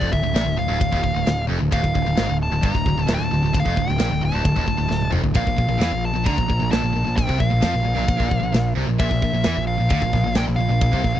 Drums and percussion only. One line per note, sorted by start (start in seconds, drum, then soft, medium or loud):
0.01 kick medium
0.13 kick medium
0.36 snare loud
0.36 ride bell medium
0.81 kick loud
0.81 ride bell medium
0.93 kick medium
1.04 kick medium
1.27 snare loud
1.27 ride bell medium
1.72 kick loud
1.72 ride bell medium
1.84 kick medium
1.95 kick medium
2.17 snare loud
2.17 ride bell medium
2.63 kick loud
2.63 ride bell medium
2.75 kick medium
2.86 kick medium
3.08 snare loud
3.08 ride bell medium
3.54 kick loud
3.54 ride bell medium
3.66 kick medium
3.77 kick medium
4.00 snare loud
4.00 ride bell medium
4.45 kick loud
4.45 ride bell medium
4.56 kick medium
4.68 kick medium
4.91 snare medium
5.01 high tom medium
5.13 mid tom medium
5.24 floor tom medium
5.35 kick loud
5.35 ride bell medium
5.47 kick medium
5.58 kick medium
5.81 snare loud
5.81 ride bell medium
6.26 kick loud
6.26 ride bell medium
6.38 kick medium
6.50 kick medium
6.73 snare loud
6.73 ride bell medium
7.18 kick loud
7.18 ride bell medium
7.29 kick medium
7.40 kick medium
7.62 snare loud
7.62 ride bell medium
8.08 kick loud
8.08 ride bell medium
8.20 kick medium
8.31 kick medium
8.54 snare loud
8.54 ride bell medium
8.99 kick loud
8.99 ride bell medium
9.11 kick medium
9.22 kick medium
9.44 snare loud
9.44 ride bell medium
9.90 kick loud
9.90 ride bell medium
10.02 kick medium
10.13 kick medium
10.35 snare loud
10.35 ride bell medium
10.81 kick loud
10.81 ride bell medium
10.93 kick medium
11.04 kick medium